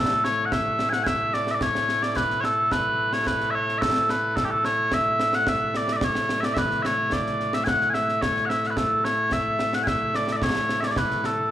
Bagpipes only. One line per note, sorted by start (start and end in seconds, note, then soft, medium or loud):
0.00 11.51 A2 medium
0.00 11.51 A3 medium
0.00 0.24 A4 loud
0.24 0.46 C#5 loud
0.46 0.52 F#5 medium
0.52 0.89 E5 medium
0.89 1.03 F#5 loud
0.89 0.93 G#5 loud
1.03 1.34 E5 loud
1.03 1.07 G#5 loud
1.34 1.51 D5 medium
1.51 1.62 D5 medium
1.51 1.54 E5 medium
1.62 2.02 C#5 medium
2.02 2.16 D5 medium
2.16 2.41 B4 loud
2.41 2.45 C#5 medium
2.45 2.72 A4 medium
2.72 3.13 B4 loud
3.13 3.27 C#5 medium
3.27 3.51 B4 loud
3.51 3.55 E5 loud
3.55 3.78 C#5 loud
3.78 4.10 A4 medium
3.78 3.82 E5 medium
4.10 4.36 B4 medium
4.36 4.45 A4 loud
4.45 4.51 G4 medium
4.51 4.65 A4 loud
4.65 4.94 C#5 loud
4.94 5.35 E5 loud
5.35 5.49 F#5 loud
5.49 5.77 E5 loud
5.77 5.93 D5 medium
5.93 6.04 D5 medium
5.93 5.96 E5 medium
6.04 6.40 C#5 medium
6.40 6.45 E5 medium
6.45 6.54 D5 medium
6.54 6.82 B4 loud
6.54 6.58 E5 loud
6.82 7.13 C#5 medium
6.82 6.86 E5 medium
7.13 7.54 D5 medium
7.54 7.64 E5 medium
7.64 7.90 F#5 loud
7.64 7.68 G#5 loud
7.90 7.94 G#5 medium
7.94 8.22 E5 medium
8.22 8.46 C#5 medium
8.46 8.67 E5 medium
8.46 8.49 F#5 medium
8.67 8.77 B4 medium
8.67 8.70 F#5 medium
8.77 9.05 A4 medium
9.05 9.33 C#5 medium
9.33 9.75 E5 loud
9.75 9.83 F#5 medium
9.83 9.87 G#5 loud
9.87 10.16 E5 loud
10.16 10.32 D5 loud
10.32 10.43 D5 medium
10.32 10.36 E5 medium
10.43 10.80 C#5 medium
10.80 10.87 D5 medium
10.80 10.84 E5 medium
10.87 10.91 C#5 medium
10.87 10.98 D5 medium
10.98 11.26 B4 medium
11.26 11.51 A4 medium